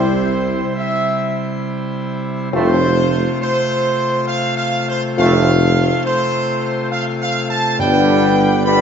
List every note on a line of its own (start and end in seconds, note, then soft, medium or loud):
0.00 0.62 C2 loud
0.00 0.22 C3 medium
0.00 2.49 C3 medium
0.00 0.22 G3 medium
0.00 2.49 G3 medium
0.00 0.23 C4 medium
0.00 0.22 E4 medium
0.00 2.49 E4 medium
0.00 0.72 C5 loud
0.00 2.49 C5 medium
0.76 1.60 E5 loud
2.53 3.26 F1 loud
2.53 2.87 A2 medium
2.53 7.75 C3 medium
2.53 7.79 A3 medium
2.53 2.87 A3 medium
2.53 2.86 C4 medium
2.53 2.86 F4 medium
2.53 7.79 F4 medium
2.53 3.37 C5 loud
2.53 7.75 C5 medium
3.41 4.24 C5 loud
4.28 4.55 F5 loud
4.58 4.86 F5 loud
4.89 5.02 C5 loud
5.18 5.91 F1 loud
5.18 5.52 A2 loud
5.18 5.52 A3 loud
5.18 5.52 C4 loud
5.18 5.51 F4 loud
5.18 6.02 F5 loud
6.05 6.88 C5 loud
6.92 7.05 F5 loud
7.22 7.49 F5 loud
7.51 7.77 A5 loud
7.78 8.81 G1 loud
7.78 8.81 G2 loud
7.78 8.62 D3 loud
7.78 8.81 D3 medium
7.78 8.61 G3 loud
7.78 8.81 G3 medium
7.78 8.62 B3 loud
7.78 8.62 D4 loud
7.78 8.81 D4 medium
7.78 8.81 B4 medium
7.78 8.62 G5 loud
8.66 8.81 D3 loud
8.66 8.81 G3 loud
8.66 8.81 B3 loud
8.66 8.81 D4 loud
8.66 8.81 B5 loud